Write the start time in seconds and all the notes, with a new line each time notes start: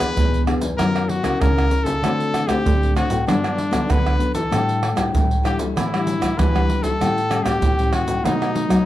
Already playing: E3
0.00 E2 B3 D4 G#4 B4, pandeiro, tamborim, shaker, surdo
0.16 E2 B2, pandeiro, shaker, surdo
0.34 pandeiro, shaker
0.47 B3 D4 G#4, pandeiro, tamborim
0.60 E2, pandeiro, shaker
0.78 F#2 F#3 C#4 E4 A#4, pandeiro, tamborim, shaker, surdo
0.96 pandeiro, tamborim, shaker
1.09 F#4, pandeiro
1.23 C#3 C#4 E4 A#4, pandeiro, tamborim, shaker, surdo
1.40 C#3 A#4, pandeiro, tamborim, shaker, surdo
1.58 pandeiro, tamborim, shaker, surdo
1.71 C#4 E4 A#4, pandeiro, shaker, surdo
1.84 C#3 A4, pandeiro, shaker, surdo
2.02 D3 A3 C4 F#4, pandeiro, tamborim, shaker, surdo
2.20 pandeiro, shaker
2.34 pandeiro, tamborim, shaker
2.47 D3 A3 C4 G4, pandeiro, tamborim, shaker, surdo
2.65 A2 D3, pandeiro, shaker, surdo
2.83 pandeiro, shaker
2.95 A3 C4 F#4, pandeiro, tamborim, shaker
3.09 A2, pandeiro, shaker
3.26 G2 F#3 B3 D4, pandeiro, tamborim, shaker, surdo
3.44 pandeiro, tamborim, shaker
3.58 pandeiro
3.71 D3 F#3 B3 D4, pandeiro, tamborim, shaker, surdo
3.89 D3 B4, pandeiro, tamborim, shaker, surdo
4.06 pandeiro, tamborim, shaker, surdo
4.18 F#3 B3 D4, pandeiro, shaker
4.35 E3 A4, pandeiro, shaker, surdo
4.50 A2 G3 D4 E4, pandeiro, tamborim, shaker, surdo
4.69 pandeiro, shaker
4.83 pandeiro, tamborim
4.95 A2 G3 D4 E4, pandeiro, tamborim, shaker, surdo
5.14 A2 E3, pandeiro, shaker, surdo
5.31 pandeiro, shaker
5.43 G3 D4 E4 G4, pandeiro, tamborim, shaker
5.59 A3, pandeiro, shaker
5.76 A2 E3 E4, pandeiro, tamborim, shaker, surdo
5.93 G3 D4 E4, pandeiro, tamborim, shaker
6.07 pandeiro, shaker
6.20 E3, pandeiro, tamborim, shaker, surdo
6.38 E3 G3 D4 E4 B4, pandeiro, tamborim, shaker, surdo
6.55 G3 D4 E4, pandeiro, tamborim, shaker, surdo
6.69 pandeiro, surdo
6.83 A3 A4, pandeiro, shaker, surdo
7.00 A2 G3 C#4 E4, pandeiro, tamborim, shaker, surdo
7.18 pandeiro, shaker
7.29 G3 C#4 E4, pandeiro, tamborim, shaker
7.44 A2 G4, pandeiro, tamborim, shaker, surdo
7.62 A2 E3, pandeiro, shaker, surdo
7.79 G3 C#4 E4, pandeiro, shaker
7.93 F#4, pandeiro, tamborim
8.07 A2, pandeiro, shaker
8.24 B2 F#3 A3 D#4, pandeiro, tamborim, shaker, surdo
8.42 pandeiro, tamborim, shaker
8.55 F#3 A3 D#4, pandeiro
8.69 F#3, pandeiro, tamborim, shaker, surdo